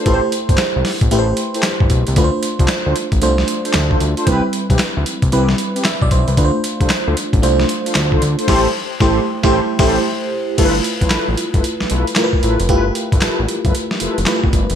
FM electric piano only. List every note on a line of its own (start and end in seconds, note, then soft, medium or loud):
0.06 1.04 A3 medium
0.06 1.04 E4 medium
0.06 1.04 G4 medium
0.06 0.15 B4 medium
0.14 1.07 C5 medium
1.11 2.09 A3 medium
1.11 2.09 E4 medium
1.11 2.09 G4 medium
1.11 1.20 B4 medium
1.19 2.13 C5 loud
2.17 3.14 A3 medium
2.17 3.14 D4 medium
2.17 3.15 F4 medium
2.17 2.25 B4 medium
2.24 3.18 C5 medium
3.22 4.19 A3 medium
3.22 4.20 D4 medium
3.22 4.20 F4 medium
3.22 4.20 C5 loud
4.27 5.25 G3 medium
4.27 5.25 C4 medium
4.27 5.25 E4 medium
4.27 5.25 B4 medium
5.32 6.30 G3 medium
5.32 6.30 C4 medium
5.32 6.30 E4 medium
5.32 5.85 B4 loud
5.86 6.01 E5 medium
6.02 6.11 D5 medium
6.11 6.27 C5 medium
6.28 6.37 B4 medium
6.37 7.35 A3 medium
6.37 7.35 D4 medium
6.37 7.35 F4 medium
6.37 6.46 B4 medium
6.45 7.39 C5 medium
7.42 8.40 A3 medium
7.42 8.40 D4 medium
7.42 8.41 F4 medium
7.42 8.41 C5 medium
8.48 8.67 A3 loud
8.48 8.67 E4 medium
8.48 8.68 G4 loud
8.48 8.68 C5 loud
9.00 9.20 A3 loud
9.00 9.20 E4 medium
9.00 9.20 G4 medium
9.00 9.20 C5 medium
9.43 9.60 A3 medium
9.43 9.60 E4 loud
9.43 9.60 G4 medium
9.43 9.61 C5 loud
9.79 9.98 A3 medium
9.79 9.99 E4 medium
9.79 9.99 G4 loud
9.79 9.99 C5 loud
10.58 11.56 A3 medium
10.58 11.56 E4 medium
10.58 11.56 F4 medium
10.58 10.67 A4 medium
10.65 11.60 B4 medium
12.16 12.65 A3 medium
12.16 12.66 E4 medium
12.16 12.66 F4 medium
12.16 12.25 A#4 medium
12.24 12.69 B4 medium
12.69 13.67 A3 medium
12.69 13.67 E4 medium
12.69 13.67 F4 medium
12.69 13.67 G4 medium
14.27 14.75 A3 medium
14.27 14.75 E4 medium
14.27 14.75 F4 medium
14.27 14.75 B4 medium